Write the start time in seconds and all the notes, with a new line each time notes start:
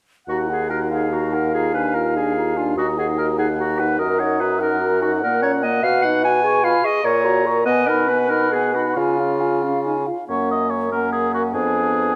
0.27 D#2 F#4 F#5 A#5
0.49 D#4 G#4 F#5
0.70 F#4 A#4 A#5
0.91 D#4 G#4 F5 F#5
1.11 F#4 A#5
1.32 D#4 A#4 F#5
1.53 F4 G#4 A#5
1.74 D4 B4 G#5
1.94 F4 A#4 A#5
2.16 D4 G#4 G#5
2.35 F4 A#5
2.57 D4 F4 G#5
2.76 D#2 F#4 D#5 A#5
2.98 D#4 G#4 F#5
3.18 F#4 A#4 A#5
3.38 D#4 G#4 F#5
3.58 F#4 A#5
3.79 D#4 B4 F#5
3.99 F#2 F#4 A#4 D#5 A#5
4.19 D#4 C#5 F#5
4.40 F#4 B4 A#5
4.59 D#4 A#4 F#5
4.81 F#4 A#5
5.02 D#4 F#4 F#5
5.22 A#2 A#3 A#4 F#5
5.42 C#4 C#5 A#5
5.63 A#3 D#5 F#5
5.83 B2 F#4 F5 F#5
6.03 D#4 D#5 F#5
6.24 F#4 F#5 G#5
6.43 G#4 G#5 C#6
6.63 F4 F5 B5
6.83 G#4 D#5 C#6
7.04 A#2 A#4 C#5 A#5 C#6
7.24 F#4 A#5
7.46 A#4 C#6
7.65 B2 B3 D#5 F#5 G#5
7.87 D#4 A#4 B5
8.09 B3 B4 G#5
8.29 D#4 A#4 B5
8.51 B3 G#4 G#5
8.74 D#4 F#4 B5
8.95 C#3 F4 F5 G#5
9.19 C#4 F5
9.41 F4 G#5
9.62 C#4 F5
9.85 D#4 G#5
10.06 F4 F5
10.29 F#2 A#3 C#4 C#5 F#5
10.51 D#5
10.70 C#5
10.92 A#3 C#4 A#4 F#5
11.12 G#4
11.34 F#4
11.54 F2 B3 D4 G#4 G#5